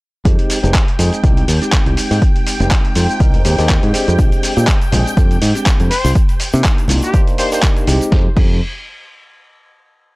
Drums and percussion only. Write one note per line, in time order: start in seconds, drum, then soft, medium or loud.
0.25 kick loud
0.25 closed hi-hat medium
0.25 shaker soft
0.39 closed hi-hat medium
0.50 open hi-hat loud
0.50 shaker medium
0.64 closed hi-hat soft
0.64 shaker soft
0.74 kick loud
0.74 clap loud
0.74 closed hi-hat medium
0.74 shaker soft
0.88 closed hi-hat medium
0.99 open hi-hat loud
0.99 shaker medium
1.13 closed hi-hat soft
1.13 shaker soft
1.24 kick loud
1.24 closed hi-hat medium
1.24 shaker soft
1.37 closed hi-hat medium
1.48 open hi-hat loud
1.48 shaker medium
1.62 closed hi-hat soft
1.62 shaker soft
1.72 kick loud
1.72 clap loud
1.72 closed hi-hat medium
1.72 shaker soft
1.86 closed hi-hat medium
1.97 open hi-hat loud
1.97 shaker medium
2.11 open hi-hat medium
2.11 shaker soft
2.22 kick loud
2.22 closed hi-hat medium
2.22 shaker soft
2.36 closed hi-hat medium
2.47 open hi-hat loud
2.47 shaker medium
2.60 closed hi-hat soft
2.60 shaker soft
2.71 kick loud
2.71 clap loud
2.71 closed hi-hat medium
2.71 shaker soft
2.85 closed hi-hat medium
2.95 open hi-hat loud
2.95 shaker medium
3.09 closed hi-hat soft
3.09 shaker soft
3.20 kick loud
3.20 closed hi-hat medium
3.20 shaker soft
3.34 closed hi-hat medium
3.45 open hi-hat loud
3.45 shaker medium
3.58 open hi-hat medium
3.58 shaker soft
3.69 kick loud
3.69 clap loud
3.69 closed hi-hat medium
3.69 shaker soft
3.83 closed hi-hat medium
3.94 open hi-hat loud
3.94 shaker medium
4.08 closed hi-hat soft
4.08 shaker soft
4.19 kick loud
4.19 closed hi-hat medium
4.19 shaker medium
4.19 shaker soft
4.32 closed hi-hat medium
4.32 shaker soft
4.43 open hi-hat loud
4.43 shaker medium
4.57 closed hi-hat soft
4.57 shaker soft
4.57 shaker medium
4.67 kick loud
4.67 clap loud
4.67 closed hi-hat medium
4.67 shaker soft
4.67 shaker medium
4.81 closed hi-hat medium
4.81 shaker soft
4.92 open hi-hat loud
4.92 low conga loud
4.92 shaker medium
5.06 closed hi-hat soft
5.06 shaker soft
5.06 shaker medium
5.17 kick loud
5.17 closed hi-hat medium
5.17 shaker medium
5.17 shaker soft
5.31 closed hi-hat medium
5.31 shaker soft
5.42 open hi-hat loud
5.42 shaker medium
5.55 closed hi-hat soft
5.55 shaker soft
5.55 shaker medium
5.66 kick loud
5.66 clap loud
5.66 closed hi-hat medium
5.66 shaker medium
5.66 shaker soft
5.80 closed hi-hat medium
5.80 shaker soft
5.91 open hi-hat loud
5.91 shaker medium
6.05 open hi-hat medium
6.05 shaker medium
6.05 shaker soft
6.15 kick loud
6.15 closed hi-hat medium
6.15 shaker medium
6.15 shaker soft
6.29 closed hi-hat medium
6.29 shaker soft
6.40 open hi-hat loud
6.40 shaker medium
6.53 closed hi-hat soft
6.53 shaker medium
6.53 shaker soft
6.64 kick loud
6.64 clap loud
6.64 closed hi-hat medium
6.64 shaker medium
6.64 shaker soft
6.78 closed hi-hat medium
6.78 shaker soft
6.88 open hi-hat loud
6.88 low conga medium
6.88 shaker medium
7.02 closed hi-hat soft
7.02 shaker medium
7.04 shaker soft
7.14 kick loud
7.14 closed hi-hat medium
7.14 shaker medium
7.14 shaker soft
7.27 closed hi-hat medium
7.27 shaker soft
7.38 open hi-hat loud
7.38 shaker medium
7.52 open hi-hat medium
7.52 shaker medium
7.52 shaker soft
7.62 kick loud
7.62 clap loud
7.62 closed hi-hat medium
7.62 shaker medium
7.62 shaker soft
7.76 closed hi-hat medium
7.76 shaker soft
7.87 open hi-hat loud
7.87 shaker medium
8.01 closed hi-hat soft
8.01 shaker medium
8.01 shaker soft
8.12 kick loud
8.12 snare medium
8.37 kick loud
8.37 crash medium